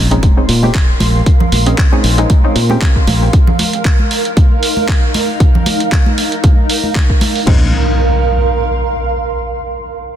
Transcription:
Already playing: fingered electric bass A#1, ambient pad A#4 F5 C6, sub drop
0.11 synth stab G#3 C4 C#4 D#4, closed hi-hat
0.23 kick, closed hi-hat, high conga
0.37 synth stab G#3 C4 C#4 D#4
0.49 fingered electric bass A#2, open hi-hat
0.63 synth stab G#3 C4 C#4 G4, high conga
0.75 kick, clap, closed hi-hat
1.00 fingered electric bass A#1, open hi-hat, high conga
1.26 kick, closed hi-hat
1.40 low conga
1.52 fingered electric bass A#1, open hi-hat, high conga
1.66 synth stab G#3 C4 C#4 D#4, closed hi-hat
1.78 kick, clap, closed hi-hat
1.92 synth stab G#3 C4 C#4 D#4, high conga
2.04 fingered electric bass A#1, open hi-hat
2.18 synth stab G#3 C4 C#4 D#4, closed hi-hat
2.30 kick, closed hi-hat, high conga
2.44 synth stab G#3 C4 C#4 D#4
2.56 fingered electric bass A#2, open hi-hat
2.69 synth stab G#3 C4 C#4 G4, high conga
2.82 kick, clap, closed hi-hat
2.96 kick
3.07 fingered electric bass A#1, open hi-hat, high conga
3.33 ambient pad D#4, kick, closed hi-hat
3.47 low conga
3.59 open hi-hat, high conga
3.73 closed hi-hat
3.85 kick, clap, closed hi-hat
3.99 high conga
4.11 open hi-hat
4.25 closed hi-hat
4.37 kick, closed hi-hat, high conga
4.63 open hi-hat
4.77 high conga
4.89 kick, clap, closed hi-hat
5.14 open hi-hat, high conga
5.40 kick, closed hi-hat
5.55 low conga
5.66 open hi-hat, high conga
5.80 closed hi-hat
5.92 kick, clap, closed hi-hat
6.06 high conga
6.18 open hi-hat
6.32 closed hi-hat
6.44 kick, closed hi-hat, high conga
6.70 open hi-hat
6.83 high conga
6.95 kick, clap, closed hi-hat
7.10 kick
7.21 open hi-hat, high conga
7.36 open hi-hat
7.46 fingered electric bass A#1, synth stab G#3 C4 C#4 D#4, ambient pad A#4, kick, crash, impact
7.56 ambient pad F5
7.64 ambient pad C6

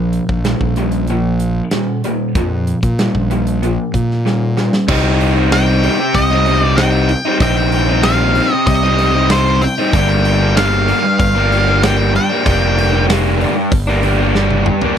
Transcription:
Already playing: fingered electric bass A#1, overdriven electric guitar A#2 F3
0.13 closed hi-hat
0.29 fingered electric bass A#1, kick
0.45 overdriven electric guitar A#2 G3, snare, closed hi-hat
0.60 fingered electric bass A#1, kick
0.76 overdriven electric guitar A#2 G3, closed hi-hat
0.92 closed hi-hat
1.07 overdriven electric guitar A#2 F3, closed hi-hat
1.40 closed hi-hat
1.71 overdriven electric guitar A#2 G3, snare, closed hi-hat
2.04 overdriven electric guitar A#2 G3, closed hi-hat
2.35 fingered electric bass F2, overdriven electric guitar A#2 F3, kick, closed hi-hat
2.67 closed hi-hat
2.83 fingered electric bass A#2, kick, closed hi-hat
2.99 overdriven electric guitar A#2 G3, snare, closed hi-hat
3.15 fingered electric bass A#1, kick
3.31 overdriven electric guitar A#2 G3, closed hi-hat
3.47 closed hi-hat
3.63 overdriven electric guitar A#2 F3, closed hi-hat
3.94 fingered electric bass A#2, kick, closed hi-hat
4.11 snare
4.26 overdriven electric guitar A#2 G3, snare
4.57 overdriven electric guitar A#2 G3, snare
4.73 snare
4.88 fingered electric bass C2, overdriven electric guitar C3 G3 C4 D#4, kick, crash
5.21 open hi-hat
5.36 overdriven electric guitar G3 C4 D#4
5.51 overdriven electric guitar C3 G3 C4 D#4, lead electric guitar G5, snare, open hi-hat
5.83 overdriven electric guitar C3 G3 C4 D#4, open hi-hat
6.00 muted overdriven electric guitar stroke
6.15 fingered electric bass C2, lead electric guitar D#5, kick, open hi-hat
6.30 overdriven electric guitar G3 C4 D#4
6.46 overdriven electric guitar C3 G3 C4 D#4, open hi-hat
6.61 overdriven electric guitar G3 C4 D#4, lead electric guitar D5
6.76 overdriven electric guitar C3 G3 C4 D#4, lead electric guitar G5, snare, open hi-hat
7.09 muted overdriven electric guitar stroke, open hi-hat
7.25 overdriven electric guitar G3 C4 D#4
7.40 fingered electric bass A#1, overdriven electric guitar C3 G3 C4 D#4, lead electric guitar G5, kick, open hi-hat
7.72 open hi-hat
7.89 overdriven electric guitar G3 C4 D#4
8.03 overdriven electric guitar C3 G3 C4 D#4, lead electric guitar F5, snare, open hi-hat
8.35 overdriven electric guitar C3 G3 C4 D#4, open hi-hat
8.52 lead electric guitar D#5, muted overdriven electric guitar stroke
8.67 fingered electric bass C2, lead electric guitar D#5, kick, open hi-hat
8.83 overdriven electric guitar G3 C4 D#4
8.98 overdriven electric guitar C3 G3 C4 D#4, open hi-hat
9.14 overdriven electric guitar G3 C4 D#4
9.30 overdriven electric guitar C3 G3 C4 D#4, lead electric guitar C5, snare, open hi-hat
9.62 lead electric guitar G5, muted overdriven electric guitar stroke, snare, open hi-hat
9.78 overdriven electric guitar G3 C4 D#4
9.92 fingered electric bass G1, overdriven electric guitar G2 D3 G3 A#3 D4, lead electric guitar G5, kick, open hi-hat
10.25 open hi-hat
10.40 overdriven electric guitar G3 A#3 D4
10.55 overdriven electric guitar G2 D3 G3 A#3 D4, lead electric guitar F5, snare, open hi-hat
10.87 overdriven electric guitar D3 G3 A#3 D4, open hi-hat
11.04 muted overdriven electric guitar stroke
11.19 fingered electric bass G1, lead electric guitar F5, kick, open hi-hat
11.35 overdriven electric guitar G3 A#3 D4
11.50 overdriven electric guitar D3 G3 A#3 D4, open hi-hat
11.66 overdriven electric guitar G3 A#3 D4
11.82 overdriven electric guitar G2 D3 G3 A#3 D4, lead electric guitar G5, snare, open hi-hat
12.14 lead electric guitar G5, muted overdriven electric guitar stroke, snare, open hi-hat
12.30 overdriven electric guitar G3 A#3 D4
12.44 fingered electric bass F1, overdriven electric guitar G2 D3 G3 A#3 D4, kick, open hi-hat
12.79 open hi-hat
12.92 overdriven electric guitar G3 A#3 D4
13.08 overdriven electric guitar G2 D3 G3 A#3 D4, snare, open hi-hat
13.39 overdriven electric guitar D3 G3 A#3 D4, open hi-hat
13.56 muted overdriven electric guitar stroke
13.72 fingered electric bass G1, kick, open hi-hat
13.87 overdriven electric guitar G3 A#3 D4
14.03 overdriven electric guitar D3 G3 A#3 D4, open hi-hat
14.19 overdriven electric guitar G3 A#3 D4
14.35 overdriven electric guitar G2 D3 G3 A#3 D4, snare
14.50 high tom
14.66 muted overdriven electric guitar stroke, mid tom
14.81 overdriven electric guitar G3 A#3 D4, floor tom

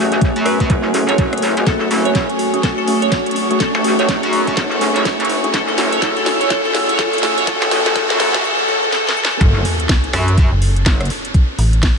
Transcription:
Already playing: wobble bass A1, synth stab A3 C#4 F#4 G#4, analog synth pad A3 F#4 G#5 F#6, riser
0.12 closed hi-hat
0.21 kick, closed hi-hat
0.36 wobble bass F#2, closed hi-hat
0.46 synth pluck B4, cross-stick, open hi-hat
0.60 synth stab A3 C#4 F#4 G#4, kick, closed hi-hat
0.70 wobble bass F#1, kick, closed hi-hat
0.94 synth stab A3 C#4 F#4 G#4, open hi-hat
1.09 wobble bass F#1, synth pluck C#5, closed hi-hat
1.18 wobble bass F#1, kick, closed hi-hat
1.33 cross-stick, closed hi-hat
1.38 closed hi-hat
1.42 open hi-hat
1.57 wobble bass G#1, closed hi-hat
1.67 wobble bass F#1, synth pluck A4, analog synth pad C#6, kick, snare, closed hi-hat
1.81 synth pluck A4
1.91 wobble bass F#1, synth stab A3 C#4 F#4 G#4, open hi-hat
2.05 synth pluck C#5, closed hi-hat
2.15 kick, snare, closed hi-hat
2.30 closed hi-hat
2.39 open hi-hat
2.54 synth stab A3 C#4 F#4 G#4, closed hi-hat
2.63 synth pluck A4, kick, snare, closed hi-hat
2.78 synth pluck A4
2.88 synth stab A3 C#4 F#4 G#4, open hi-hat
3.02 synth pluck C#5, closed hi-hat
3.12 kick, snare, closed hi-hat
3.26 closed hi-hat
3.31 closed hi-hat
3.36 open hi-hat
3.51 synth stab A3 C#4 F#4 G#4, closed hi-hat
3.60 synth pluck A4, kick, snare, closed hi-hat
3.75 wobble bass A1, synth pluck A4
3.84 synth stab A3 C#4 F#4 G#4, open hi-hat
3.99 synth pluck C#5, closed hi-hat
4.09 kick, snare, closed hi-hat
4.23 wobble bass F#2, closed hi-hat
4.33 open hi-hat
4.47 synth stab A3 C#4 F#4 G#4, kick, closed hi-hat
4.57 wobble bass F#1, synth pluck A4, kick, snare, closed hi-hat
4.72 synth pluck A4
4.81 synth stab A3 C#4 F#4 G#4, open hi-hat
4.96 wobble bass F#1, synth pluck C#5, closed hi-hat
5.05 kick, snare, closed hi-hat
5.20 wobble bass F#1, closed hi-hat
5.25 closed hi-hat
5.29 open hi-hat
5.44 synth stab A3 C#4 F#4 G#4, closed hi-hat
5.54 wobble bass F#1, synth pluck A4, analog synth pad E6, kick, snare, closed hi-hat
5.68 synth pluck A4
5.78 wobble bass F#1, synth stab A3 C#4 F#4 G#4, snare, open hi-hat
5.92 synth pluck C#5, closed hi-hat
6.02 synth pluck A4, kick, snare, closed hi-hat
6.17 synth pluck A4, closed hi-hat
6.26 synth stab A3 C#4 F#4 G#4, snare, open hi-hat
6.41 synth pluck C#5, closed hi-hat
6.50 synth pluck A4, kick, snare, closed hi-hat
6.65 synth pluck A4
6.75 synth stab A3 C#4 F#4 G#4, snare, open hi-hat
6.89 synth pluck C#5, closed hi-hat
6.99 synth pluck A4, kick, snare, closed hi-hat
7.13 synth pluck A4, closed hi-hat
7.18 closed hi-hat
7.23 synth stab A3 C#4 F#4 G#4, snare, open hi-hat
7.38 synth pluck C#5, closed hi-hat
7.47 synth stab A3 C#4 F#4 G#4, synth pluck A4, kick, snare, closed hi-hat
7.62 wobble bass A1, synth pluck A4, snare
7.71 synth stab A3 C#4 F#4 G#4, synth pluck A4, snare, open hi-hat
7.86 synth pluck A4, snare, closed hi-hat
7.96 synth stab A3 C#4 F#4 G#4, synth pluck A4, kick, snare, closed hi-hat
8.10 wobble bass F#2, synth pluck A4, snare, closed hi-hat
8.20 synth stab A3 C#4 F#4 G#4, synth pluck A4, snare, open hi-hat
8.34 synth pluck A4, kick, snare, closed hi-hat
8.44 synth pluck A4
8.59 synth pluck A4
8.68 synth pluck A4
8.83 synth pluck A4
8.92 synth pluck A4, snare
9.07 synth pluck A4, snare
9.17 synth pluck A4
9.25 snare
9.31 synth pluck A4
9.41 wobble bass F#1, analog synth pad F#4 C#5 G#5 A5, kick, closed hi-hat, sub drop
9.65 open hi-hat
9.80 closed hi-hat
9.89 kick, snare, closed hi-hat
10.04 closed hi-hat
10.13 wobble bass F#2, cross-stick, open hi-hat
10.28 closed hi-hat
10.38 kick, closed hi-hat
10.52 fm bass F#1
10.62 open hi-hat
10.76 closed hi-hat
10.86 wobble bass F#1, kick, snare, closed hi-hat
11.01 cross-stick, closed hi-hat
11.05 closed hi-hat
11.10 open hi-hat
11.25 closed hi-hat
11.34 kick, closed hi-hat
11.58 fm bass A1, open hi-hat
11.73 closed hi-hat
11.83 kick, snare, closed hi-hat

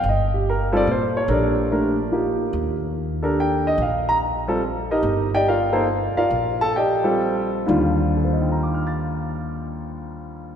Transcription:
0.04 upright bass G1
0.09 upright piano D#5
0.34 upright piano G4
0.50 upright piano A#4
0.72 upright piano G3 C4 F4 A4
0.77 upright piano D5
0.87 upright bass A#2
0.91 upright piano C5
1.17 upright piano C#5
1.28 upright bass A#1, upright piano D4 G4 A4 A#4
1.33 upright piano D5
1.71 upright piano A3 D4 G4 A#4
2.12 upright piano F3 A#3 D#4 G4
2.53 upright bass D#2
3.22 upright piano D4 G4 A4 A#4
3.40 upright piano G5
3.67 upright piano D#5
3.78 upright bass A#1
3.82 upright piano F5
4.09 upright piano A#5
4.48 upright piano G3 C4 F4 A4
4.91 upright piano D#4 G4 A#4 D#5
5.03 upright bass G1
5.34 upright piano G4 D5 D#5 G5
5.48 upright piano F4 A#4 D5 F5
5.73 upright piano A#3 D#4 A4 C5
6.16 upright piano F4 A#4 D5 F5, muted upright bass stroke
6.30 upright bass A#1
6.61 upright piano A4 A5
6.76 upright piano G4 D5 D#5 G5
7.04 upright piano G3 C4 F4 A4
7.66 upright piano D#2 D3 D#3 G3 F4, upright bass D#2
8.17 upright piano A4
8.25 upright piano C5
8.33 upright piano D#5
8.42 upright piano G5
8.52 upright piano A#5
8.63 upright piano D6
8.74 upright piano F6
8.87 upright piano A6

